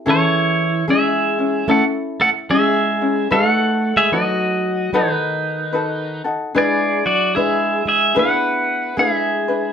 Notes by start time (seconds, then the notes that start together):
0.06 E3 C#4 E4 G#4 A4
0.10 C#5
0.88 G#3 C#4 E4 G#4 E5
1.39 C#4 E4
1.68 A3 C#4 E4 A4 F#5
2.20 A3 A4 F#5
2.50 G#3 C#4 E4 G#4 E5
3.01 C#4 E4
3.31 A3 D#4 F#4 A4 B4 F5
3.49 F#5
3.96 G#3 G#4 E5
4.12 F#3 D#4 F#4 A4 B4 D#5
4.93 D#3 D#4 F#4 A4 B4
5.73 D#4 F#4 A4 B4
6.24 D#4 F#4 A4
6.55 G#3 D4 E4 G#4 B4 D5
7.06 F#3 F#4 D5
7.35 G#3 D4 E4 G#4 B4 E5
7.86 G#3 G#4 E5
8.15 B3 D4 E4 G#4 B4
8.19 B4 F#5
8.97 G#3 D4 E4 G#4 B4 E5
9.48 D4 E4 B4